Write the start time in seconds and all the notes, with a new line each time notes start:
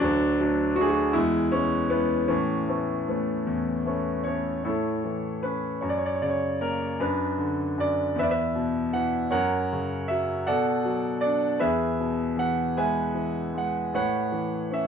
0.00 D2 F#3 D4
0.40 F#3 A3 D4
0.76 F#3 A3 D4 F#4
0.81 G#4
0.88 F#4
1.13 E2 G#3 E4
1.52 G#3 B3 C#4 E4
1.90 G#3 B3 E4
2.28 A2 E3 C#4
2.68 A3 B3 C#4
3.08 A3 B3 C#4
3.47 E2
3.86 A3 B3 C#4
4.24 A3 B3 C#4 C#5
4.64 A2 E4 A4 C#5
5.04 E3
5.43 C#4 B4
5.81 F#2 C#5
5.89 D5
5.98 C#5
6.06 D5
6.15 C#5
6.22 C#3 D5
6.30 C#5
6.61 A#3 A#4
7.00 F#2 D4 B4
7.38 D3
7.78 F#2 D5
8.16 E2 B4 E5
8.23 D5
8.31 B4 E5
8.55 B2
8.93 E3 F#5
9.30 F#2 A#4 C#5 F#5
9.72 C#3
10.08 F#3 E5
10.47 B2 A4 D5 F#5
10.85 F#3
11.21 D5
11.25 D4
11.59 E2 G#4 B4 E5
11.99 B2
12.37 E3 F#5
12.77 G#3 B4 E5 G#5
13.14 E3
13.54 G#3 F#5
13.94 A2 B4 C#5 F#5
14.32 E3
14.71 C#4 E5